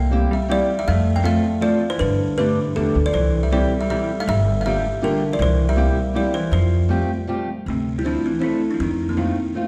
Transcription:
Already playing: upright bass C2, hollow-body jazz guitar A#3, kalimba G5
0.11 steel-string acoustic guitar G3 A#3 C4 E4 G4
0.31 hollow-body jazz guitar G3, kalimba E5
0.48 steel-string acoustic guitar G3 A#3 C4 E4 G4, hollow-body jazz guitar G3, kalimba D5
0.79 hollow-body jazz guitar G3, kalimba E5
0.88 upright bass F2, hollow-body jazz guitar A3, kalimba F5
1.15 hollow-body jazz guitar A#3, kalimba G5
1.23 steel-string acoustic guitar F3 A3 C4 F4 A4, hollow-body jazz guitar A3, kalimba F5
1.61 steel-string acoustic guitar F3 A3 C4 F4 A4, hollow-body jazz guitar F3, kalimba D5
1.90 hollow-body jazz guitar E3, kalimba C5
1.99 upright bass G2, hollow-body jazz guitar D3, kalimba B4
2.38 hollow-body jazz guitar D3, steel-string acoustic guitar G3 A3 B3 D4 G4, kalimba B4
2.75 upright bass E2, hollow-body jazz guitar D3, steel-string acoustic guitar G3 A3 B3 D4 G4, kalimba A4
2.95 upright bass D2
3.06 hollow-body jazz guitar F3, kalimba D5
3.13 upright bass C2, hollow-body jazz guitar E3, kalimba C5
3.43 hollow-body jazz guitar G3, kalimba E5
3.51 steel-string acoustic guitar E3 G3 C4 E4 G4, hollow-body jazz guitar G3, kalimba D5
3.81 hollow-body jazz guitar G3, kalimba E5
3.89 steel-string acoustic guitar E3 G3 C4 E4 G4, hollow-body jazz guitar G3, kalimba E5
4.20 hollow-body jazz guitar A3, kalimba F5
4.28 upright bass G1, hollow-body jazz guitar G3, kalimba E5
4.61 hollow-body jazz guitar A3, kalimba F5
4.65 steel-string acoustic guitar G3 A#3 D4 F4 G4, hollow-body jazz guitar G3, kalimba E5
5.01 hollow-body jazz guitar D3, steel-string acoustic guitar G3 A#3 D4 F4 G4, kalimba A#4
5.33 hollow-body jazz guitar F3, kalimba D5
5.39 upright bass C2, hollow-body jazz guitar E3, kalimba C5
5.69 hollow-body jazz guitar G3, kalimba E5
5.76 steel-string acoustic guitar G3 A#3 C4 E4 G4
6.14 steel-string acoustic guitar G3 A#3 C4 E4 G4, hollow-body jazz guitar G3, kalimba D5
6.34 hollow-body jazz guitar E3, kalimba C5
6.52 upright bass F2, hollow-body jazz guitar F3, kalimba C5
6.88 steel-string acoustic guitar G3 A3 C4 F4 G4
7.27 steel-string acoustic guitar G3 A3 C4 F4 G4
7.66 upright bass D2, hollow-body jazz guitar C3, kalimba A3
7.98 hollow-body jazz guitar G3, kalimba E4
8.04 steel-string acoustic guitar F3 C4 D4 E4, hollow-body jazz guitar F3, kalimba D4
8.26 hollow-body jazz guitar E3, kalimba C4
8.39 steel-string acoustic guitar F3 C4 D4 E4, kalimba E4
8.44 hollow-body jazz guitar A3
8.71 hollow-body jazz guitar F3, kalimba D4
8.80 upright bass F2, hollow-body jazz guitar D#3, kalimba C4
9.09 hollow-body jazz guitar D3, kalimba A#3
9.17 hollow-body jazz guitar D#3, steel-string acoustic guitar A3 C4 D#4 F4, kalimba C4
9.55 steel-string acoustic guitar A3 C4 D#4 F4

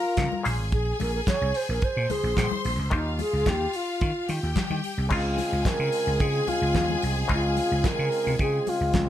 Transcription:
Already playing: clav C#3 C#4 D#4 C5, alto flute F4, string section A#4 A#5
0.17 slap bass C#3, kick, snare, clap, closed hi-hat, high conga
0.32 high conga
0.43 slap bass A#1, clav A#2 A#3 C#4 G#4 C5, string section G#4 G#5, open hi-hat
0.60 slap bass G#1
0.72 slap bass A#1, alto flute G#4, kick, closed hi-hat
1.00 slap bass A#1, alto flute A#4, open hi-hat, muted conga
1.15 alto flute A#4
1.27 alto flute C#5, kick, snare, clap, closed hi-hat, high conga
1.41 slap bass C2
1.54 alto flute C5, open hi-hat
1.69 slap bass A#1, alto flute A#4
1.82 alto flute C5, kick, closed hi-hat, muted conga
1.97 slap bass A#2
2.10 alto flute G#4, string section C5 C6, open hi-hat, muted conga, low conga
2.23 slap bass A#1
2.37 slap bass A#2, kick, snare, clap, closed hi-hat, high conga
2.51 high conga
2.65 slap bass A#1, open hi-hat
2.79 slap bass C#2
2.90 slap bass D#2, clav D#3 A#3 C#4 F4 G4 C5, alto flute D#4, string section F4 F5, kick, closed hi-hat
3.19 alto flute G#4, open hi-hat, muted conga
3.33 slap bass C#2
3.46 slap bass D#2, alto flute G4, kick, snare, clap, closed hi-hat, high conga
3.73 alto flute F4, open hi-hat
4.01 slap bass D#3, kick, closed hi-hat, muted conga
4.29 slap bass D#3, string section G4 G5, open hi-hat, muted conga
4.43 slap bass D#2
4.56 kick, snare, clap, closed hi-hat, high conga
4.70 slap bass D#3, high conga
4.84 open hi-hat
4.98 slap bass C2
5.09 slap bass C#2, clav C#3 G#3 C4 D#4 F4, tonewheel organ C#3 G#3 C4 F4, alto flute F4, string section G#4 G#5, kick, crash
5.38 open hi-hat, muted conga
5.52 slap bass C#2
5.65 alto flute A#4, kick, snare, clap, closed hi-hat, high conga
5.79 slap bass C#3
5.92 open hi-hat
6.07 slap bass C#2
6.20 slap bass C#3, alto flute G#4, kick, closed hi-hat, muted conga
6.47 alto flute F4, open hi-hat, muted conga, low conga
6.62 slap bass C#2
6.74 slap bass D#2, kick, snare, clap, closed hi-hat, high conga
6.89 high conga
7.02 slap bass C2, open hi-hat
7.28 slap bass C#2, clav C#3 G#3 C4 D#4 F4, kick, closed hi-hat
7.33 alto flute F4
7.57 open hi-hat, muted conga
7.71 slap bass C#2
7.84 alto flute A#4, kick, snare, clap, closed hi-hat, high conga
7.99 slap bass C#3
8.12 open hi-hat
8.26 slap bass C3, low conga
8.39 slap bass C#3, alto flute G#4, kick, closed hi-hat
8.67 alto flute F4, open hi-hat, muted conga
8.81 slap bass C#2
8.94 slap bass C#2, kick, snare, clap, closed hi-hat, high conga

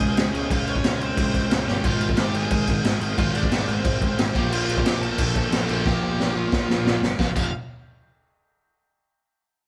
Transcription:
Already playing: overdriven electric guitar C#3 G#3 C#4, lead electric guitar G#4 G#5
0.00 picked electric bass C#2, kick, crash
0.16 picked electric bass C#2, snare, crash
0.32 picked electric bass C#2, overdriven electric guitar C#3 G#3 C#4, crash
0.49 picked electric bass C#2, overdriven electric guitar C#3 G#3 C#4, lead electric guitar F4 F5, kick, crash
0.67 picked electric bass C#2, lead electric guitar C#4 C#5, crash
0.76 kick
0.83 picked electric bass C#2, snare, crash
1.00 picked electric bass C#2, lead electric guitar C4 C5, crash
1.17 picked electric bass C#2, kick, crash
1.34 picked electric bass C#2, kick, crash
1.51 picked electric bass C#2, snare, crash
1.67 picked electric bass G1, overdriven electric guitar C#3 G#3 C#4, lead electric guitar G4 G5, snare
1.82 picked electric bass G#1, overdriven electric guitar G#2 D#3 G#3, lead electric guitar F4 F5, kick, crash
2.00 picked electric bass G#1, crash
2.09 kick
2.17 picked electric bass G#1, lead electric guitar G4 G5, snare, crash
2.34 picked electric bass G#1, lead electric guitar G#4 G#5, crash
2.51 picked electric bass G#1, kick, crash
2.67 picked electric bass G#1, kick, crash
2.84 picked electric bass G#1, snare, crash
3.00 picked electric bass G#1, overdriven electric guitar G#2 D#3 G#3, crash
3.16 picked electric bass G#1, overdriven electric guitar G#2 D#3 G#3, lead electric guitar F4 F5, kick, crash
3.34 picked electric bass G#1, lead electric guitar D4 D5, crash
3.43 kick
3.51 picked electric bass G#1, snare, crash
3.67 picked electric bass G#1, lead electric guitar C4 C5, crash
3.85 picked electric bass G#1, kick, crash
4.01 picked electric bass G#1, kick, crash
4.17 picked electric bass G#1, snare, crash
4.34 picked electric bass A#1, overdriven electric guitar A#2 F3 A#3, lead electric guitar G4 G5, kick, crash
4.51 picked electric bass A#1, lead electric guitar F4 F5, crash
4.68 picked electric bass A#1, crash
4.77 kick
4.84 picked electric bass A#1, lead electric guitar G4 G5, snare, crash
5.01 picked electric bass A#1, lead electric guitar A4 A5, crash
5.18 picked electric bass A#1, kick, crash
5.35 picked electric bass A#1, kick, crash
5.51 picked electric bass A#1, overdriven electric guitar A#2 F3 A#3, snare, crash
5.67 picked electric bass A#1, overdriven electric guitar A#2 F3 A#3, crash
5.86 picked electric bass A#1, lead electric guitar G4 G5, kick, snare
6.02 picked electric bass A#1, lead electric guitar G4 G5
6.18 picked electric bass A#1, snare
6.35 picked electric bass A#1, lead electric guitar F4 F5
6.52 picked electric bass A#1, kick, snare
6.69 picked electric bass A#1, snare
6.84 picked electric bass A#1, overdriven electric guitar A#2 F3 A#3, snare
7.02 picked electric bass G1, snare
7.19 picked electric bass F1, overdriven electric guitar F2 C3 F3, lead electric guitar F5, kick, snare
7.35 picked electric bass F1, overdriven electric guitar F2 C3 F3, lead electric guitar F5, kick, crash

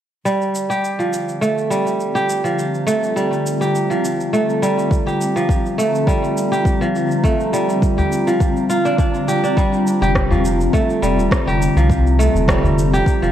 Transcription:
0.25 ambient pad D3, kora G3, shaker
0.41 shaker
0.55 ambient pad C4, shaker
0.62 ambient pad G3
0.70 kora G4, shaker
0.84 shaker
0.99 kora F3, shaker
1.09 ambient pad F4
1.13 shaker
1.29 shaker
1.41 kora A3, ambient pad A#5, shaker
1.58 shaker
1.70 kora G3, shaker
1.87 shaker
2.00 shaker
2.15 kora G4, shaker
2.30 shaker
2.44 kora F3, shaker
2.59 shaker
2.75 shaker
2.87 kora A3, shaker
3.04 shaker
3.16 kora G3, shaker
3.33 shaker
3.46 shaker
3.61 kora G4, shaker
3.75 shaker
3.90 kora F3, shaker
4.05 shaker
4.20 shaker
4.33 kora A3, shaker
4.49 shaker
4.62 kora G3, shaker
4.79 shaker
4.91 kick, shaker
5.06 kora G4, shaker
5.21 shaker
5.36 kora F3, shaker
5.49 kick, shaker
5.66 shaker
5.78 kora A3, shaker
5.95 shaker
6.07 kora G3, kick, shaker
6.24 shaker
6.37 shaker
6.52 kora G4, shaker
6.65 kick, shaker
6.81 kora F3, shaker
6.96 shaker
7.11 shaker
7.24 kora A3, kick, shaker
7.40 shaker
7.53 kora G3, shaker
7.69 shaker
7.82 kick, shaker
7.98 kora G4, udu, shaker
8.12 shaker
8.27 kora F3, shaker
8.40 kick, shaker
8.57 shaker
8.70 kora F4, shaker
8.85 kora D4, shaker
8.98 kora D4, kick, shaker
9.15 shaker
9.28 kora G4, shaker
9.44 kora D4, shaker
9.57 kora G3, kick, shaker
9.73 shaker
9.87 shaker
10.02 analog synth bass F1, kora G4, shaker
10.15 kick, cross-stick, shaker
10.31 kora F3, udu, shaker
10.45 shaker
10.61 shaker
10.73 kora A3, kick, shaker
10.90 shaker
11.03 analog synth bass F1, kora G3, shaker
11.18 analog synth bass D#1, shaker
11.32 kick, cross-stick, shaker
11.47 analog synth bass F1, kora G4, shaker
11.62 shaker
11.77 analog synth bass C2, kora F3, shaker
11.90 kick, shaker
12.07 shaker
12.19 kora A3, shaker
12.35 analog synth bass F1, udu, shaker
12.48 kora G3, kick, cross-stick, shaker
12.64 udu, shaker
12.78 shaker
12.93 kora G4, shaker
13.06 kick, shaker
13.22 analog synth bass F1, kora F3, shaker

